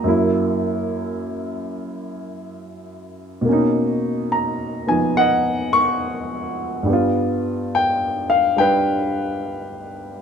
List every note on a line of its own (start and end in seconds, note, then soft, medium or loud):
0.04 3.45 F#2 medium
0.04 3.46 F#3 soft
0.04 3.44 A#3 medium
0.08 3.48 E4 medium
3.41 6.85 B2 medium
3.41 6.87 A#3 medium
3.49 6.88 C#4 medium
3.49 4.87 D#4 medium
4.32 4.84 A#5 medium
4.87 6.88 F3 soft
4.87 6.87 B3 soft
4.87 6.88 D#4 soft
4.87 5.18 G#5 medium
5.17 6.84 D#5 medium
5.17 5.30 F#5 medium
5.73 6.54 C#6 loud
6.83 10.22 G2 medium
6.83 8.55 G3 medium
6.89 10.22 B3 medium
6.89 10.22 F4 medium
7.75 8.26 G5 medium
8.30 8.36 F5 medium
8.57 10.22 G3 soft
8.57 10.22 D4 soft
8.57 10.22 B4 medium
8.57 9.95 G5 medium